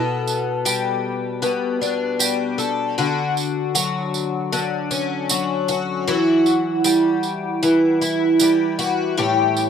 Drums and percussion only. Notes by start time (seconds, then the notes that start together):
0.27 tambourine
0.66 tambourine
1.43 tambourine
1.83 tambourine
2.20 tambourine
2.59 tambourine
2.99 tambourine
3.37 tambourine
3.75 tambourine
4.14 tambourine
4.53 tambourine
4.91 tambourine
5.29 tambourine
5.68 tambourine
6.07 tambourine
6.46 tambourine
6.84 tambourine
7.23 tambourine
7.63 tambourine
8.02 tambourine
8.40 tambourine
8.79 tambourine
9.18 tambourine
9.57 tambourine